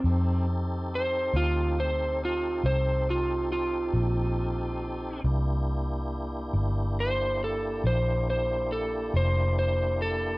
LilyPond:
<<
  \new Staff \with { instrumentName = "Electric slide guitar" } { \time 12/8 \key f \major \tempo 4. = 46 c'8 r8 c''8 f'8 c''8 f'8 c''8 f'8 f'2 | r2 c''8 a'8 c''8 c''8 a'8 c''8 c''8 a'8 | }
  \new Staff \with { instrumentName = "Tonewheel organ" } { \time 12/8 \key f \major <c' ees' g' a'>1. | <bes d' e' g'>1. | }
  \new Staff \with { instrumentName = "Fingered electric bass" } { \clef bass \time 12/8 \key f \major f,4. d,4. c,4. bes,,4. | c,4. g,,4. bes,,4. f,,4. | }
>>